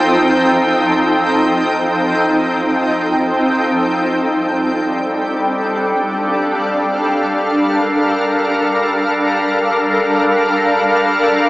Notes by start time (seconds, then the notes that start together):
Already playing: F2 F3 C4 D#4 A4 G5
3.90 G2 G3 D4
4.16 A4
4.51 D4
5.66 F5
6.62 A#4